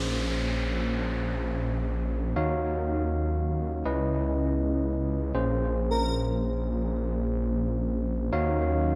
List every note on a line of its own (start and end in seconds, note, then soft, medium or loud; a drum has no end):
0.00 2.35 A#1 medium
0.00 2.33 G#3 medium
0.00 2.33 A#3 medium
0.00 2.34 A#3 medium
0.00 2.34 C#4 medium
0.00 8.29 C#4 medium
0.00 2.34 G#4 medium
0.00 2.33 C5 medium
0.00 2.34 C5 medium
0.00 downlifter medium
2.36 3.84 D#2 medium
2.36 3.84 F#3 medium
2.36 3.83 D#4 medium
2.36 3.83 F#4 medium
2.36 3.83 C#5 medium
2.36 5.32 D#5 medium
2.36 3.83 F5 medium
2.36 3.84 F5 medium
3.85 5.33 C#2 medium
3.85 5.33 B3 medium
3.85 5.33 C#4 medium
3.85 5.33 E4 medium
3.85 5.33 B4 medium
3.85 5.33 D#5 medium
5.34 8.31 A#1 medium
5.34 8.29 A#3 medium
5.34 8.31 A#3 medium
5.34 8.31 C#4 medium
5.34 8.29 G#4 medium
5.34 8.31 G#4 medium
5.34 8.30 C5 medium
5.34 8.31 C5 medium
5.91 6.13 A#4 medium
8.32 8.95 D#2 medium
8.32 8.95 F#3 medium
8.32 8.95 C#4 medium
8.32 8.95 D#4 medium
8.32 8.95 F#4 medium
8.32 8.95 C#5 medium
8.32 8.95 D#5 medium
8.32 8.95 F5 medium